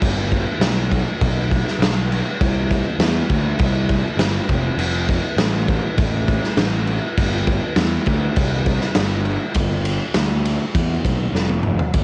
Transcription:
0.02 G1, kick, crash
0.32 kick, crash
0.60 B1, snare, crash
0.92 kick, crash
1.21 B1, kick, crash
1.51 kick, crash
1.68 snare
1.79 B1, snare, crash
2.12 crash
2.41 C2, kick, crash
2.71 kick, crash
2.99 E2, snare, crash
3.29 D2, kick, crash
3.59 C2, kick, crash
3.89 kick, crash
4.17 G1, snare, crash
4.49 F1, kick, crash
4.77 F1, crash
5.08 kick, crash
5.37 A1, snare, crash
5.68 kick, crash
5.97 A1, kick, crash
6.28 kick, crash
6.44 snare
6.57 A1, snare, crash
6.87 crash
7.17 G1, kick, crash
7.47 kick, crash
7.76 E2, snare, crash
8.06 D2, kick, crash
8.36 C2, kick, crash
8.66 kick, crash
8.81 snare
8.95 G1, snare, crash
9.25 crash
9.54 G1, kick, ride
9.85 ride
10.14 D2, snare, ride
10.46 ride
10.75 E2, kick, ride
11.05 B1, kick, ride
11.33 F1, snare
11.50 high tom
11.63 mid tom
11.79 floor tom
11.94 G1, kick, ride

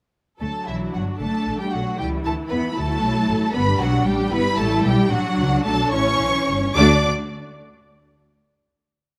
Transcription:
0.41 D2 F#3 A3 D4 A4 A5
0.67 B1 E3 E4 E5
0.94 G1 F#3 F#4 F#5
1.19 F#1 A3 A4 A5
1.47 A1
1.58 G3 G4 G5
1.72 B1 F#3 F#4 F#5
1.98 C#2 E3 G3 E4 G4 G5
2.24 D2 A3 A4 A5
2.49 E2 B3 B4 B5
2.75 D2 F#3 A3 A4 A5
3.02 B1
3.28 A1
3.53 G1 G3 B3 D4 B4 B5
3.79 B1 F#3 F#4 F#5
4.05 A1 G3 G4 G5
4.32 G1 B3 E4 B4 B5
4.58 A1 A3 A4 A5
4.84 B1 G3 G4 G5
5.10 A1 F#3 D4 F#4 F#5
5.37 C#2
5.64 B1 A3 A4 A5
5.91 A1 E3 C#4 C#5 C#6
6.19 B1
6.48 G1
6.76 D2 A3 D4 F#4 D5 D6

